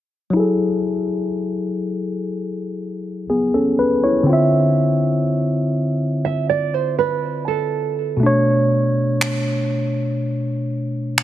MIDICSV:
0, 0, Header, 1, 4, 480
1, 0, Start_track
1, 0, Key_signature, 3, "minor"
1, 0, Tempo, 983607
1, 169, Time_signature, 4, 2, 24, 8
1, 5481, End_track
2, 0, Start_track
2, 0, Title_t, "Nylon-string guitar"
2, 0, Program_c, 0, 24
2, 3049, Note_on_c, 0, 76, 69
2, 3163, Note_off_c, 0, 76, 0
2, 3169, Note_on_c, 0, 74, 77
2, 3289, Note_off_c, 0, 74, 0
2, 3289, Note_on_c, 0, 72, 81
2, 3403, Note_off_c, 0, 72, 0
2, 3409, Note_on_c, 0, 71, 75
2, 3637, Note_off_c, 0, 71, 0
2, 3649, Note_on_c, 0, 69, 69
2, 3991, Note_off_c, 0, 69, 0
2, 5481, End_track
3, 0, Start_track
3, 0, Title_t, "Tine electric piano"
3, 0, Program_c, 1, 4
3, 148, Note_on_c, 1, 54, 69
3, 163, Note_on_c, 1, 64, 69
3, 179, Note_on_c, 1, 68, 65
3, 194, Note_on_c, 1, 69, 79
3, 262, Control_c, 1, 64, 127
3, 1587, Note_off_c, 1, 64, 0
3, 1594, Note_off_c, 1, 68, 0
3, 1602, Note_off_c, 1, 69, 0
3, 1609, Note_on_c, 1, 68, 61
3, 1612, Note_on_c, 1, 59, 48
3, 1723, Note_off_c, 1, 68, 0
3, 1725, Note_off_c, 1, 59, 0
3, 1729, Note_on_c, 1, 69, 61
3, 1732, Note_on_c, 1, 61, 54
3, 1843, Note_off_c, 1, 69, 0
3, 1844, Note_off_c, 1, 61, 0
3, 1849, Note_on_c, 1, 71, 65
3, 1963, Note_off_c, 1, 71, 0
3, 1969, Note_on_c, 1, 73, 61
3, 1972, Note_on_c, 1, 64, 49
3, 2059, Note_off_c, 1, 54, 0
3, 2065, Note_on_c, 1, 50, 74
3, 2081, Note_on_c, 1, 60, 68
3, 2096, Control_c, 1, 64, 0
3, 2097, Note_on_c, 1, 65, 66
3, 2113, Note_on_c, 1, 76, 78
3, 2184, Control_c, 1, 64, 127
3, 2197, Note_off_c, 1, 73, 0
3, 2199, Note_off_c, 1, 64, 0
3, 3978, Note_off_c, 1, 50, 0
3, 3986, Note_off_c, 1, 60, 0
3, 3986, Note_on_c, 1, 47, 73
3, 3993, Note_off_c, 1, 65, 0
3, 4001, Note_off_c, 1, 76, 0
3, 4002, Note_on_c, 1, 57, 68
3, 4014, Control_c, 1, 64, 0
3, 4017, Note_on_c, 1, 62, 67
3, 4033, Note_on_c, 1, 73, 82
3, 4109, Control_c, 1, 64, 127
3, 5481, Note_off_c, 1, 47, 0
3, 5481, Note_off_c, 1, 57, 0
3, 5481, Note_off_c, 1, 62, 0
3, 5481, Note_off_c, 1, 73, 0
3, 5481, End_track
4, 0, Start_track
4, 0, Title_t, "Drums"
4, 4496, Note_on_c, 9, 26, 105
4, 4545, Note_off_c, 9, 26, 0
4, 5455, Note_on_c, 9, 26, 116
4, 5481, Note_off_c, 9, 26, 0
4, 5481, End_track
0, 0, End_of_file